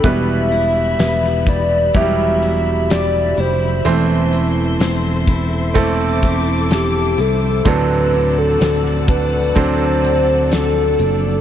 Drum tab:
HH |x-x-x-x-x-x-x-x-|x-x-x-x-x-x-x-x-|x-x-x-x-x-x-x-x-|
SD |----oo------o---|----o-------o---|----oo------o---|
BD |o-----o-o-------|------o-o-o-----|o-----o-o-------|